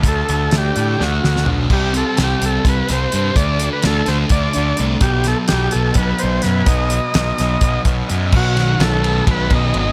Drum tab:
CC |--------------|x-------------|--------------|--------------|
RD |--------------|--------------|--------------|--------------|
HH |x-x-x-x-------|--x-x-x-x-x-x-|x-x-x-x-x-x-x-|x-x-x-x-x-x-x-|
SD |----o---o-oo--|----o-----o---|----o-o-------|--o-o-------o-|
FT |------------o-|--------------|--------------|--------------|
BD |o-------------|o-------o-----|o-------o-----|o-------o-----|

CC |--------------|x-------------|
RD |--------------|--x-x-x-x-x-x-|
HH |x-x-x-x-x-x-x-|--------------|
SD |----o-o-------|--o-o---------|
FT |--------------|--------------|
BD |o-------o-o---|o-------o-o---|